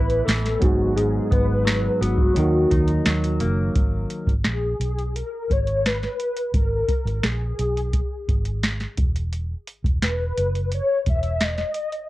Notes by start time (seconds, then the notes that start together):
Already playing: A1 A2 E3 A3 B3 E4 B4
0.09 closed hi-hat
0.24 A1 E3 A4, tambourine
0.28 snare, closed hi-hat
0.45 snare, closed hi-hat
0.59 G#1 G#2 F#3 B3 D#4 F#4, kick, closed hi-hat
0.64 G#4
0.96 G#2 G#4, closed hi-hat
1.31 G#1 B3 B4, kick, closed hi-hat
1.65 F#3, snare, closed hi-hat, tambourine
2.01 G#1 B3 F#4, closed hi-hat
2.18 kick
2.34 D#2 D#3 F#3 A#3 D#4, closed hi-hat
2.39 A#4
2.71 D#2 D#4, kick, closed hi-hat
2.88 closed hi-hat
3.05 D#2 F#3, snare, closed hi-hat, tambourine
3.24 closed hi-hat
3.40 F#1 A#3, closed hi-hat
3.75 G#1, kick, closed hi-hat
4.10 closed hi-hat
4.27 G#1, kick, closed hi-hat
4.44 A#1 G#4, snare, closed hi-hat
4.80 B1, closed hi-hat
4.99 closed hi-hat
5.16 A#4, closed hi-hat
5.50 G#1 C#5, kick, closed hi-hat
5.67 closed hi-hat
5.86 B4, snare, closed hi-hat
6.03 snare, closed hi-hat
6.20 closed hi-hat
6.37 closed hi-hat
6.54 G#1 A#4, kick, closed hi-hat
6.88 kick, closed hi-hat
7.05 G#1, closed hi-hat
7.23 A#1 G#4, snare, closed hi-hat
7.59 B1, closed hi-hat
7.77 closed hi-hat
7.93 kick, closed hi-hat
8.29 G#1, kick, closed hi-hat
8.45 closed hi-hat
8.63 snare, closed hi-hat
8.80 snare, closed hi-hat
8.97 E1, kick, closed hi-hat
9.16 closed hi-hat
9.33 closed hi-hat
9.67 closed hi-hat
9.84 E1, kick, closed hi-hat
10.02 E1 B4, snare, closed hi-hat
10.37 F#1, closed hi-hat
10.55 closed hi-hat
10.72 C#5, closed hi-hat
11.06 E1 E5, kick, closed hi-hat
11.23 closed hi-hat
11.41 D#5, snare, closed hi-hat
11.58 snare, closed hi-hat
11.74 closed hi-hat
11.92 closed hi-hat